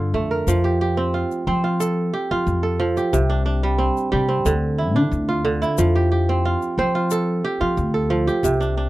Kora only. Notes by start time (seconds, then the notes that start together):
Already playing: D3 C4 D4 F4 A4
0.14 A3
0.31 A#4
0.48 F3
0.64 G4
0.81 G4
0.97 C4
1.14 F4
1.47 C4 C5
1.64 F4
1.80 A4
2.13 G4
2.31 F4
2.63 A4
2.80 F3
2.97 G4
3.13 C3
3.30 D4
3.46 D4
3.63 G3
3.78 C4
4.12 G3 G4
4.29 C4
4.46 D3
4.78 E4
4.96 D4
5.29 F4
5.45 D3
5.62 E4
5.78 F3
5.95 G4
6.12 G4
6.29 C4
6.45 F4
6.79 C4 C5
6.95 F4
7.11 A4
7.45 G4
7.61 F4
7.94 A4
8.10 F3
8.27 G4
8.44 C3
8.60 D4
8.77 D4